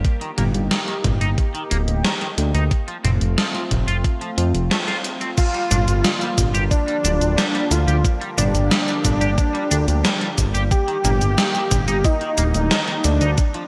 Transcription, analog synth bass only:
0.38 G1
0.54 G1
1.05 G1
1.21 G1
1.71 D1
1.88 D1
2.38 D2
2.54 D2
3.04 F1
3.21 F1
3.71 F1
3.88 F1
4.38 F2
4.54 F1
5.71 G1
5.88 G1
6.38 G1
6.54 G1
7.04 D1
7.21 D1
7.71 D2
7.88 D2
8.38 G1
8.55 G1
9.05 G1
9.21 G1
9.71 D2
9.88 D2
10.38 G1
10.54 G1
11.04 G1
11.21 G1
11.71 G1
11.88 G1
12.38 D1
12.55 D1
13.05 D2
13.21 D2

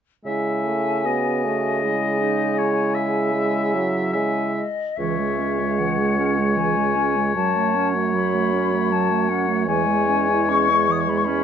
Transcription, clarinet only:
0.25 E4
1.05 F#4
1.83 E4
2.20 D#4
2.57 E4
4.12 E4
4.98 E3
5.19 G#3
5.39 C#4
5.59 G#3
5.80 E3
5.99 G#3
6.19 C#4
6.38 G#3
6.57 E3
6.76 G#3
6.95 C#4
7.16 G#3
7.35 F#3
7.56 A3
7.75 C#4
7.95 A3
8.14 F#3
8.34 A3
8.53 C#4
8.73 A3
8.92 F#3
9.11 A3
9.29 C#4
9.48 A3
9.67 E3
9.87 G#3
10.08 C#4
10.29 E4
10.49 C#4
10.70 G#3
10.89 E3
11.09 G#3
11.27 C#4

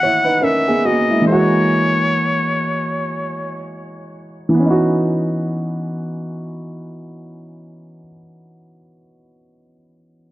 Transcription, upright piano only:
Already playing: E3
0.03 E4 C#5
0.25 D#4 B4
0.42 C#4 A#4
0.68 B3 G#4
0.85 A#3 F#4
1.10 G#3 E4
1.22 E3 G#3
1.29 A#3 F#4
4.49 E3
4.54 B3
4.60 C#4
4.65 D#4
4.70 F#4

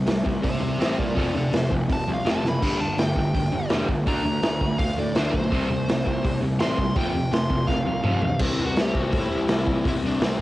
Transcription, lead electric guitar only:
0.44 C5 E5
0.63 C5 E5
0.81 C5 E5
0.99 A#4 D5
1.18 A4 D5
1.36 A4 D5
1.56 C5
1.93 A5
2.14 F5
2.31 A5
2.48 B5
2.81 A5
2.99 G5
4.08 A#5
4.79 F5
4.99 D5
5.15 C5
5.32 C5
6.60 C6
6.96 G5
7.33 C6
7.67 F5
8.45 E4
8.65 F#4
8.82 G4
9.01 F#4
9.19 E4
9.88 E4
10.07 D4
10.24 C4

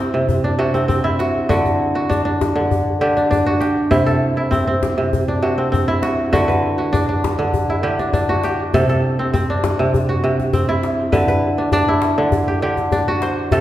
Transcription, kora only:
Already playing: C3 C4 D4 E4 G4 A4
0.14 C3
0.44 D4
0.59 C3 F#4
0.74 C4
0.88 C4
1.04 E4
1.19 F#4
1.49 D3 F#4
1.95 F#4
2.09 D4
2.25 D4
2.55 D3
3.01 D3 G4
3.17 D4
3.31 D4
3.46 F#4
3.60 G4
3.91 C3 E4
4.06 A4
4.37 E4
4.51 C4
4.67 C4
4.98 C3
5.28 D4
5.42 C3 F#4
5.58 C4
5.72 C4
5.88 E4
6.02 F#4
6.33 D3 F#4
6.48 B4
6.78 F#4
6.93 D4
7.09 D4
7.39 D3
7.70 E4
7.83 D3 G4
7.99 D4
8.13 D4
8.29 F#4
8.44 G4
8.74 C3 A4
8.89 A4
9.19 C4
9.33 C4
9.50 D4
9.79 C3
10.09 F#4
10.24 C3
10.53 C4
10.69 E4
11.12 D3 B4
11.28 B4
11.58 D4
11.73 D4
11.88 E4
12.18 D3
12.48 G4
12.62 D3 G4
12.92 D4
13.08 F#4
13.23 C5
13.52 C3 A4

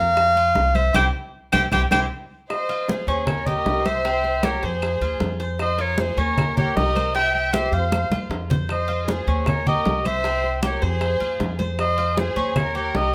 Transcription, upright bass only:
Already playing: F2
0.56 C2
0.94 C2
1.53 C2
1.72 C2
1.91 C2
3.07 D#2
3.65 C2
4.63 F2
5.01 D#2
5.20 F2
6.17 D#2
6.76 C2
7.72 F2
8.10 D#2
8.30 F2
9.27 D#2
9.86 C2
10.82 F2
11.21 D#2
11.40 F2
12.36 D#2
12.95 C2

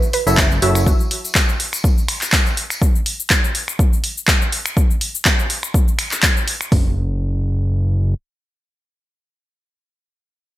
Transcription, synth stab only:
0.27 F#3 E4 F#4 A4 C#5 E5
0.62 F#3 E4 F#4 A4 C#5 E5

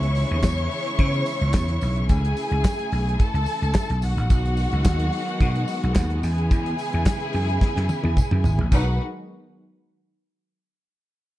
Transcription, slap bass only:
Already playing: C#2
0.31 D#2
0.44 E2
0.99 C#3
1.41 C#2
1.54 E2
1.82 B1
2.10 C#2
2.51 C#2
2.92 B1
3.34 C#2
3.62 C#2
3.90 B1
4.03 B1
4.17 A1
4.31 B1
4.73 C#2
4.85 D#2
5.41 B2
5.84 B1
5.96 D#2
6.23 E2
6.51 E2
6.94 E2
7.34 F#2
7.77 F#2
8.04 E2
8.32 F#2
8.45 G#1
8.60 A1
8.72 B1

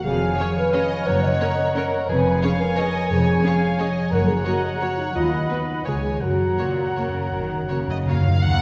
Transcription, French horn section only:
0.05 G#4
0.57 B4
1.07 C#5
1.23 D#5
1.76 C#5
2.09 B4
2.60 A#4
2.78 B4
2.93 A#4
3.10 G#4
4.11 A#4
4.28 G#4
4.45 F#4
4.63 G#4
4.80 F#4
4.98 D#4
5.15 F4
5.31 D#4
5.85 F4
6.02 G#4
6.21 F#4

